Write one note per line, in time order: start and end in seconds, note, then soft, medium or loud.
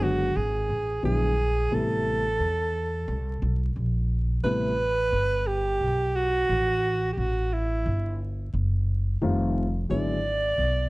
0.00 0.32 F#1 medium
0.00 0.27 D3 medium
0.00 0.27 F#3 medium
0.00 0.27 G#3 medium
0.00 0.27 B3 medium
0.00 0.27 F#4 medium
0.00 0.38 F#4 medium
0.36 0.68 G#1 medium
0.36 1.04 G#4 medium
0.69 1.02 A1 medium
1.03 1.68 A#1 medium
1.03 1.29 D3 medium
1.03 1.29 F#3 medium
1.03 1.29 G#3 medium
1.03 1.29 B3 medium
1.03 1.30 E4 medium
1.03 1.76 G#4 loud
1.71 2.37 A1 medium
1.71 2.21 C3 medium
1.71 2.22 G3 medium
1.71 2.22 A3 medium
1.71 2.22 B3 medium
1.71 2.22 E4 medium
1.71 3.77 A4 loud
2.39 3.04 E2 medium
3.08 3.40 C2 medium
3.42 3.74 B1 loud
3.76 4.41 A#1 medium
4.43 5.09 A1 medium
4.43 4.70 C3 medium
4.43 4.70 G3 medium
4.43 4.70 A3 medium
4.43 4.70 B3 medium
4.43 4.70 E4 medium
4.43 5.49 B4 loud
5.12 5.77 G1 medium
5.47 6.17 G4 loud
5.81 6.45 B1 medium
6.16 7.12 F#4 loud
6.49 7.14 A1 medium
7.13 7.20 G4 medium
7.17 7.82 A1 medium
7.17 7.55 F#4 medium
7.54 8.21 E4 medium
7.86 8.50 G1 medium
8.54 9.18 F#1 medium
9.22 9.86 F1 medium
9.22 9.64 D#3 medium
9.22 9.64 G3 medium
9.22 9.64 A3 medium
9.22 9.64 C4 medium
9.22 9.64 F4 medium
9.89 10.55 G#1 medium
9.89 10.15 D3 medium
9.89 10.15 F#3 medium
9.89 10.16 G#3 medium
9.89 10.16 B3 medium
9.89 10.16 E4 medium
9.89 10.89 D5 loud
10.58 10.89 B1 medium